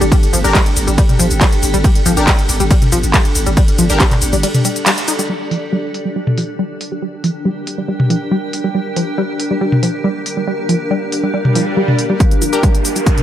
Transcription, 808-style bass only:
0.01 G1
0.33 G1
0.44 G1
0.76 G1
0.87 G1
1.20 G1
1.31 G1
1.63 G1
1.74 G1
2.06 G1
2.17 G1
2.49 G1
2.60 G1
2.92 G1
3.03 G1
3.35 G1
3.47 G1
3.79 G1
3.90 G1
4.22 G1
4.33 G1

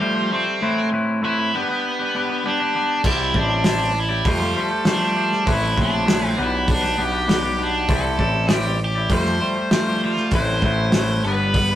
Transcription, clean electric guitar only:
0.00 F3 G3 A3 G4 C5
0.15 G3 G4 C5
0.31 G3 A3 G4 C5
0.61 A2 A3 C4 E4 B4
0.92 A3 C4 E4 B4
1.22 A2 A3 C4 E4 B4
1.39 C4 E4 B4
1.54 B3 D4 G4 B4
1.69 D4 G4 B4
1.99 D4 G4 B4
2.15 B3 D4 G4 B4
2.29 D4 G4 B4
2.44 B3 D4 G4 B4
2.60 D4 G4 B4
2.75 B3 D4 G4 B4
3.05 C4 E4 G4 D5
3.34 C4 E4 G4 D5
3.65 C4 E4 G4 D5
3.79 E4 G4 D5
3.94 muted clean electric guitar stroke
4.09 E4 G4 D5
4.25 F3 G3 A3 G4 C5
4.39 G3 G4 C5
4.55 G3 A3 G4 C5
4.70 G3 G4 C5
4.85 F3 G3 A3 G4 C5
5.00 G3 G4 C5
5.15 G3 A3 G4 C5
5.45 A2 A3 C4 E4 B4
5.76 A3 C4 E4 B4
6.06 A2 A3 C4 E4 B4
6.21 C4 E4 B4
6.37 B3 D4 G4 B4
6.52 D4 G4 B4
6.82 D4 G4 B4
6.97 B3 D4 G4 B4
7.12 D4 G4 B4
7.27 B3 D4 G4 B4
7.43 D4 G4 B4
7.58 B3 D4 G4 B4
7.89 C4 E4 G4 D5
8.18 C4 E4 G4 D5
8.48 C4 E4 G4 D5
8.65 E4 G4 D5
8.79 muted clean electric guitar stroke
8.95 E4 G4 D5
9.10 F3 G3 A3 G4 C5
9.26 G3 G4 C5
9.40 G3 A3 G4 C5
9.56 G3 G4 C5
9.71 F3 G3 A3 G4 C5
9.87 G3 G4 C5
10.04 G3 A3 G4 C5
10.34 A2 A3 C4 E4 B4
10.64 A3 C4 E4 B4
10.94 A2 A3 C4 E4 B4
11.11 C4 E4 B4
11.26 G3 B3 D4 B4
11.40 B3 D4 B4
11.71 B3 D4 B4

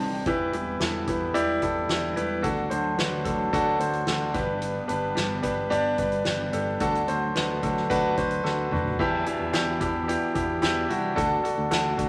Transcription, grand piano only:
Already playing: C3 D4 D#4 B4 C5 D5 G5
0.00 D#5 A5
0.14 D5 G5
0.27 E3 E4 G4 B4
0.53 E4 G4 B4
0.80 E4 G4 A4
1.08 E4 G4 B4
1.34 E4 G4 D5
1.62 E4 G4 A4
1.90 E4 G4 D5
2.16 E4 G4 B4
2.42 D3 D4 F#4 A4
2.70 D4 F#4 C5
2.98 D4 F#4 B4
3.24 D4 F#4 A4
3.53 D4 F#4 A4
3.79 D4 F#4 C5
4.07 D4 F#4 A4
4.34 G2 D4 G4 B4
4.88 D4 G4 B4
5.15 D4 G4 D5
5.42 D4 G4 B4
5.70 D4 G4 D5
5.98 D4 G4 B4
6.24 D4 G4 B4
6.53 D4 G4 A4
6.80 D3 D4 F#4 A4
7.08 D4 F#4 C5
7.35 D4 F#4 B4
7.62 D4 F#4 A4
7.90 D4 F#4 B4
8.16 D4 F#4 C5
8.44 D4 F#4 A4
8.72 D4 F#4 B4
8.99 E3 D4 E4 G4
9.26 D4 E4 G4
9.53 D4 E4 G4
9.81 D4 E4 G4
10.08 D4 E4 G4
10.35 D4 E4 G4
10.62 D4 E4 G4
10.89 D4 E4 F#4
11.15 D3 D4 F#4 A4
11.43 D4 F#4 A4
11.71 D4 F#4 A4
11.97 D4 F#4 A4

